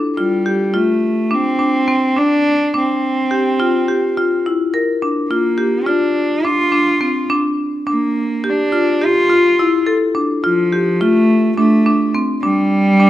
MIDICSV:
0, 0, Header, 1, 3, 480
1, 0, Start_track
1, 0, Tempo, 570342
1, 1826, Time_signature, 9, 3, 24, 8
1, 11024, End_track
2, 0, Start_track
2, 0, Title_t, "Marimba"
2, 0, Program_c, 0, 12
2, 0, Note_on_c, 0, 62, 61
2, 111, Note_off_c, 0, 62, 0
2, 147, Note_on_c, 0, 65, 62
2, 351, Note_off_c, 0, 65, 0
2, 386, Note_on_c, 0, 67, 57
2, 590, Note_off_c, 0, 67, 0
2, 620, Note_on_c, 0, 65, 64
2, 1029, Note_off_c, 0, 65, 0
2, 1101, Note_on_c, 0, 62, 58
2, 1307, Note_off_c, 0, 62, 0
2, 1338, Note_on_c, 0, 62, 61
2, 1545, Note_off_c, 0, 62, 0
2, 1580, Note_on_c, 0, 60, 60
2, 1786, Note_off_c, 0, 60, 0
2, 1823, Note_on_c, 0, 62, 61
2, 2231, Note_off_c, 0, 62, 0
2, 2306, Note_on_c, 0, 62, 59
2, 2713, Note_off_c, 0, 62, 0
2, 2785, Note_on_c, 0, 67, 63
2, 2989, Note_off_c, 0, 67, 0
2, 3027, Note_on_c, 0, 65, 64
2, 3230, Note_off_c, 0, 65, 0
2, 3267, Note_on_c, 0, 67, 61
2, 3470, Note_off_c, 0, 67, 0
2, 3512, Note_on_c, 0, 65, 63
2, 3713, Note_off_c, 0, 65, 0
2, 3755, Note_on_c, 0, 64, 55
2, 3955, Note_off_c, 0, 64, 0
2, 3987, Note_on_c, 0, 70, 60
2, 4190, Note_off_c, 0, 70, 0
2, 4228, Note_on_c, 0, 62, 57
2, 4430, Note_off_c, 0, 62, 0
2, 4465, Note_on_c, 0, 65, 63
2, 4669, Note_off_c, 0, 65, 0
2, 4694, Note_on_c, 0, 67, 57
2, 4902, Note_off_c, 0, 67, 0
2, 4936, Note_on_c, 0, 65, 62
2, 5347, Note_off_c, 0, 65, 0
2, 5425, Note_on_c, 0, 62, 60
2, 5629, Note_off_c, 0, 62, 0
2, 5657, Note_on_c, 0, 62, 60
2, 5864, Note_off_c, 0, 62, 0
2, 5898, Note_on_c, 0, 60, 59
2, 6105, Note_off_c, 0, 60, 0
2, 6141, Note_on_c, 0, 62, 69
2, 6550, Note_off_c, 0, 62, 0
2, 6623, Note_on_c, 0, 62, 61
2, 7031, Note_off_c, 0, 62, 0
2, 7102, Note_on_c, 0, 67, 64
2, 7307, Note_off_c, 0, 67, 0
2, 7342, Note_on_c, 0, 65, 65
2, 7547, Note_off_c, 0, 65, 0
2, 7587, Note_on_c, 0, 67, 66
2, 7790, Note_off_c, 0, 67, 0
2, 7823, Note_on_c, 0, 65, 62
2, 8028, Note_off_c, 0, 65, 0
2, 8074, Note_on_c, 0, 64, 65
2, 8274, Note_off_c, 0, 64, 0
2, 8302, Note_on_c, 0, 69, 66
2, 8507, Note_off_c, 0, 69, 0
2, 8540, Note_on_c, 0, 62, 58
2, 8746, Note_off_c, 0, 62, 0
2, 8784, Note_on_c, 0, 65, 70
2, 8988, Note_off_c, 0, 65, 0
2, 9026, Note_on_c, 0, 67, 59
2, 9229, Note_off_c, 0, 67, 0
2, 9264, Note_on_c, 0, 65, 68
2, 9672, Note_off_c, 0, 65, 0
2, 9743, Note_on_c, 0, 62, 67
2, 9947, Note_off_c, 0, 62, 0
2, 9983, Note_on_c, 0, 62, 62
2, 10187, Note_off_c, 0, 62, 0
2, 10222, Note_on_c, 0, 60, 60
2, 10426, Note_off_c, 0, 60, 0
2, 10461, Note_on_c, 0, 62, 66
2, 10869, Note_off_c, 0, 62, 0
2, 10940, Note_on_c, 0, 62, 63
2, 11024, Note_off_c, 0, 62, 0
2, 11024, End_track
3, 0, Start_track
3, 0, Title_t, "Cello"
3, 0, Program_c, 1, 42
3, 145, Note_on_c, 1, 55, 64
3, 626, Note_on_c, 1, 57, 66
3, 639, Note_off_c, 1, 55, 0
3, 1125, Note_on_c, 1, 60, 79
3, 1138, Note_off_c, 1, 57, 0
3, 1836, Note_on_c, 1, 62, 92
3, 1849, Note_off_c, 1, 60, 0
3, 2311, Note_off_c, 1, 62, 0
3, 2338, Note_on_c, 1, 60, 77
3, 3728, Note_off_c, 1, 60, 0
3, 4462, Note_on_c, 1, 58, 65
3, 4944, Note_on_c, 1, 62, 70
3, 4956, Note_off_c, 1, 58, 0
3, 5428, Note_on_c, 1, 65, 86
3, 5440, Note_off_c, 1, 62, 0
3, 6147, Note_off_c, 1, 65, 0
3, 6642, Note_on_c, 1, 58, 69
3, 7148, Note_on_c, 1, 62, 75
3, 7160, Note_off_c, 1, 58, 0
3, 7613, Note_on_c, 1, 65, 86
3, 7626, Note_off_c, 1, 62, 0
3, 8320, Note_off_c, 1, 65, 0
3, 8796, Note_on_c, 1, 53, 73
3, 9264, Note_on_c, 1, 57, 88
3, 9276, Note_off_c, 1, 53, 0
3, 9732, Note_off_c, 1, 57, 0
3, 9737, Note_on_c, 1, 57, 75
3, 10187, Note_off_c, 1, 57, 0
3, 10453, Note_on_c, 1, 55, 99
3, 11024, Note_off_c, 1, 55, 0
3, 11024, End_track
0, 0, End_of_file